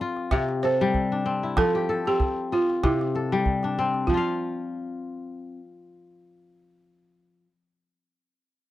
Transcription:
Already playing: F3 C4 D4 G4 A4 D5
0.01 F4
0.17 calabash click
0.31 C3 E5, calabash thump, calabash click
0.49 calabash click
0.62 A4 C5, calabash click
0.81 G3
0.94 calabash thump
1.12 D4
1.26 C4, calabash click
1.43 E4
1.57 F3 A4, calabash thump, calabash click
1.75 G4
1.89 A4
2.06 C4 G4, calabash click
2.20 calabash thump, calabash click
2.52 F4, calabash click
2.70 calabash click
2.84 C3 E4, calabash thump, calabash click
3.01 calabash click
3.15 A4, calabash click
3.32 G3, calabash click
3.46 calabash thump
3.63 D4, calabash click
3.79 C4
3.94 calabash click
4.07 F3 F4, calabash thump
4.14 F4 F5

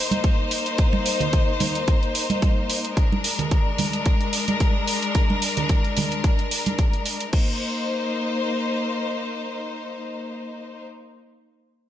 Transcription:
Already playing: A#3 D#4 C5
0.11 closed hi-hat, high conga
0.24 kick, closed hi-hat
0.51 open hi-hat
0.66 closed hi-hat
0.78 kick, closed hi-hat
0.93 high conga
1.06 open hi-hat
1.20 closed hi-hat, low conga
1.33 kick, closed hi-hat
1.60 open hi-hat, high conga, low conga
1.75 closed hi-hat
1.88 kick, closed hi-hat
2.03 closed hi-hat
2.15 open hi-hat
2.30 closed hi-hat, high conga
2.42 kick, closed hi-hat
2.70 open hi-hat
2.85 closed hi-hat
2.97 G#3 D4 A#4, kick, closed hi-hat
3.12 high conga
3.24 open hi-hat
3.39 closed hi-hat, low conga
3.51 kick, closed hi-hat
3.78 open hi-hat, high conga, low conga
3.93 closed hi-hat
4.06 kick, closed hi-hat
4.21 closed hi-hat
4.33 open hi-hat
4.48 closed hi-hat, high conga
4.60 kick, closed hi-hat
4.88 open hi-hat
5.03 closed hi-hat
5.15 kick, closed hi-hat
5.30 high conga
5.42 open hi-hat
5.57 closed hi-hat, low conga
5.69 kick, closed hi-hat
5.84 closed hi-hat
5.97 open hi-hat, high conga, low conga
6.12 closed hi-hat
6.24 kick, closed hi-hat
6.39 closed hi-hat
6.51 open hi-hat
6.66 closed hi-hat, high conga
6.79 kick, closed hi-hat
6.93 closed hi-hat
7.06 open hi-hat
7.20 closed hi-hat
7.33 A#3 D#4 C5, kick, crash

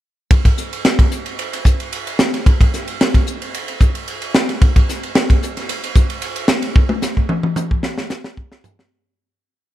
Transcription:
0.31 kick, ride
0.45 kick, ride
0.58 hi-hat pedal
0.73 ride
0.85 snare, ride
0.99 kick, ride
1.12 hi-hat pedal
1.26 ride
1.39 ride
1.53 ride
1.65 kick, hi-hat pedal
1.80 ride
1.93 ride
2.07 ride
2.19 snare, hi-hat pedal
2.34 snare, ride
2.46 kick, ride
2.61 kick, ride
2.74 snare, hi-hat pedal
2.88 ride
3.01 snare, ride
3.14 kick, ride
3.27 hi-hat pedal
3.42 ride
3.54 ride
3.68 ride
3.81 kick, hi-hat pedal
3.95 ride
4.08 ride
4.22 ride
4.34 snare, hi-hat pedal
4.49 snare, ride
4.62 kick, ride
4.76 kick, ride
4.89 snare, hi-hat pedal
5.03 ride
5.15 snare, ride
5.30 kick, ride
5.43 hi-hat pedal
5.57 snare, ride
5.69 ride
5.84 ride
5.95 kick, hi-hat pedal
6.10 ride
6.22 ride
6.36 ride
6.48 snare, hi-hat pedal
6.62 snare, ride
6.76 kick
6.89 high tom
7.02 snare, hi-hat pedal
7.17 kick
7.29 mid tom
7.43 mid tom
7.56 hi-hat pedal, mid tom
7.71 kick
7.83 snare
7.98 snare
8.10 snare, hi-hat pedal
8.24 snare
8.37 kick
8.52 snare
8.64 floor tom, hi-hat pedal
8.79 snare

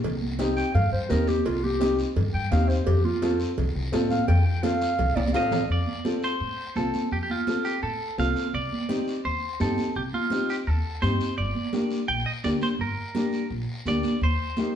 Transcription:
0.04 C2, cowbell, high conga, low conga, long guiro
0.22 high conga
0.39 C4 D#4 G4, cowbell, high conga, short guiro
0.57 G5, short guiro
0.74 G2 F5, cowbell, high conga, low conga, long guiro
0.92 G2 C5
1.09 D#2 C4 D#4 G4 A#4, cowbell, high conga, low conga, short guiro
1.27 G4, high conga, short guiro
1.45 C2 F4, cowbell, high conga, long guiro
1.64 G4, high conga
1.80 C4 D#4 G4, cowbell, high conga, short guiro
1.99 short guiro
2.16 G2, cowbell, high conga, low conga, long guiro
2.34 G2 G5
2.51 D#2 C4 D#4 G4 F5, cowbell, high conga, low conga, short guiro
2.69 C5, short guiro
2.86 F2 G4, cowbell, high conga, low conga, long guiro
3.04 F4, high conga
3.22 C4 F4 A4, cowbell, high conga, short guiro
3.40 short guiro
3.58 C2, cowbell, high conga, low conga, long guiro
3.75 C2
3.92 A2 C4 F4 A4, cowbell, high conga, low timbale, short guiro
4.10 F5, high conga, short guiro
4.28 F2 G5, cowbell, high conga, low conga, long guiro
4.46 G5
4.63 C4 F4 A4 F5, cowbell, high conga, short guiro
4.81 short guiro
4.98 C2, cowbell, high conga, low conga, long guiro
5.16 C2 D5, high conga, high timbale
5.28 high conga
5.34 A2 C4 F4 A4 D#5 F5, cowbell, high timbale, short guiro
5.51 low conga, low timbale, short guiro
5.69 F2 D5, high conga, long guiro
5.86 high conga
6.05 C4 F4 A4, high conga, short guiro
6.23 C5, short guiro
6.40 A2, high conga, long guiro
6.76 C2 C4 F4 A4, high conga, short guiro
6.94 high conga, short guiro
7.11 F2 G4, high conga, long guiro
7.23 G4
7.29 F4, high conga
7.47 C4 F4 A4, high conga, short guiro
7.65 G4, short guiro
7.83 A2 A4, high conga, long guiro
8.18 C2 C4 F4 A4 F5, high conga, short guiro
8.36 high conga, short guiro
8.53 C2 D5, high conga, long guiro
8.72 high conga
8.89 C4 D#4 G4, high conga, short guiro
9.08 short guiro
9.25 D#2 C5, high conga, long guiro
9.60 G2 C4 D#4 G4 A4, high conga, short guiro
9.77 high conga, short guiro
9.95 C2 G4, high conga, long guiro
10.13 F4, high conga
10.30 C4 D#4 G4, high conga, short guiro
10.49 G4, short guiro
10.67 D#2 A4, high conga, long guiro
11.02 G2 C4 D#4 G4 C5, high conga, short guiro
11.20 short guiro
11.37 G1 D5, high conga, long guiro
11.55 high conga
11.73 A#3 D4 G4, high conga, short guiro
11.91 short guiro
12.08 A#1 G5, high conga, long guiro
12.26 D#5
12.44 D2 A#3 D4 G4 D5, high conga, short guiro
12.61 C5, high conga, short guiro
12.79 G1 A#4, high conga, long guiro
13.15 A#3 D4 G4, high conga, short guiro
13.33 short guiro
13.50 A#1, high conga, long guiro
13.86 D2 A#3 D4 G4 D5, high conga, short guiro
14.03 high conga, short guiro
14.21 D#2 C5, high conga, long guiro
14.57 A#3 D#4 G4, high conga, short guiro

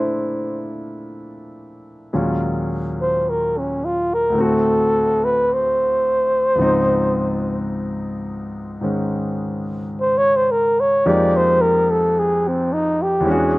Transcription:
Already playing: A#2 F3 A3 A#3 C4 D4 E4 C5
2.13 D#2 A#2 F#3 G#3 C#4 F4
3.01 C5
3.30 A#4
3.58 C#4
3.85 F4
4.14 A#4
4.30 D2 A2
4.35 A3 C4
4.40 F#4 A4
5.25 B4
5.53 C5
6.56 C#2 G#2 F3
6.60 C4 D#4
8.81 G#2 D#3 G#3 C#4
10.01 C5
10.18 C#5
10.36 C5
10.51 A#4
10.80 C#5
11.06 F2 F3 G#3 A#3 D#4 G4 D5
11.36 C5
11.61 A#4
11.91 A4
12.19 G#4
12.48 C4
12.73 D#4
13.02 G4
13.20 E2 E3
13.24 G#3 C#4
13.29 D4 F#4 G#4

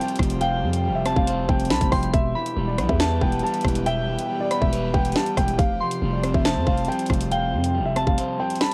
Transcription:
Already playing: F3 G3 C4 G4 C5 G5
0.01 closed hi-hat
0.08 closed hi-hat
0.16 F1 F3, kick, cross-stick, closed hi-hat
0.23 closed hi-hat
0.30 closed hi-hat
0.41 C3 F5 G5, closed hi-hat
0.62 F2 F3
0.73 closed hi-hat
0.84 G3
0.89 F1
0.95 E5
1.06 C4 A5, cross-stick, closed hi-hat
1.16 F1 F5, kick
1.27 C5, closed hi-hat
1.49 F1 C4 G5, kick
1.60 closed hi-hat
1.65 closed hi-hat
1.70 C2 G3 A5 B5, snare, closed hi-hat
1.76 closed hi-hat
1.81 F1, kick, closed hi-hat
1.92 F1 F3 G5 C6, kick, cross-stick, open hi-hat
2.03 closed hi-hat
2.13 E1 B2 E3 B3 G4 E5, kick, closed hi-hat
2.35 E3 B5
2.46 closed hi-hat
2.57 E1 G3
2.68 D5
2.78 B1 B3, cross-stick, closed hi-hat
2.89 E2 E5, kick
3.00 B4 A5, snare, closed hi-hat
3.21 E1 B3 G5, kick
3.32 closed hi-hat
3.39 G3 A5, closed hi-hat
3.47 closed hi-hat
3.54 closed hi-hat
3.61 E1 E3, kick, cross-stick, closed hi-hat
3.68 closed hi-hat
3.75 closed hi-hat
3.86 B2 E5 G5, closed hi-hat
4.08 E3
4.19 closed hi-hat
4.29 G3
4.40 D5
4.51 B3 B5, cross-stick, closed hi-hat
4.62 E1 E5, kick
4.73 B4, closed hi-hat
4.94 E1 B3 G5, kick
5.05 closed hi-hat
5.12 G3 A5, snare, closed hi-hat
5.19 closed hi-hat
5.26 closed hi-hat
5.37 E1 E3 G5, kick, cross-stick, closed hi-hat
5.48 closed hi-hat
5.58 F1 C3 F3 C4 F5, kick, closed hi-hat
5.80 F3 C6
5.91 closed hi-hat
6.02 F1 G3
6.13 D5
6.23 C4, cross-stick, closed hi-hat
6.34 F1 E5, kick
6.45 C5 A5, snare, closed hi-hat
6.56 F2
6.67 F1 C4 F5, kick
6.78 closed hi-hat
6.85 G3 G5, closed hi-hat
6.92 closed hi-hat
6.99 closed hi-hat
7.06 F1 F3, kick, cross-stick, closed hi-hat
7.13 closed hi-hat
7.21 closed hi-hat
7.31 C3 F5 G5, closed hi-hat
7.53 F2 F3
7.64 closed hi-hat
7.75 G3
7.80 F1
7.86 E5
7.96 C4 A5, cross-stick, closed hi-hat
8.07 F1 F5, kick
8.18 C5, closed hi-hat
8.39 C4 G5
8.50 closed hi-hat
8.56 closed hi-hat
8.61 G3 A5 B5, snare, closed hi-hat
8.66 closed hi-hat

